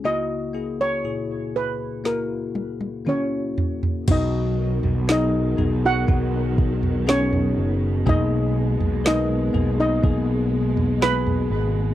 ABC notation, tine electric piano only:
X:1
M:4/4
L:1/8
Q:1/4=60
K:B
V:1 name="Tine electric piano"
[A,EF] [A,EG] [A,,EG]2 [A,EF]2 [A,EF]2 | [B,DF]2 [B,DG] [B,DG] [B,DF]2 [B,DG]2 | [A,B,G]2 [B,AB] [A,B,G] [A,B,G]2 [G,B,G]2 |]
V:2 name="Tine electric piano" clef=bass
[C,,C,]8 | B,,3 z4 z | B,,3 z4 z |]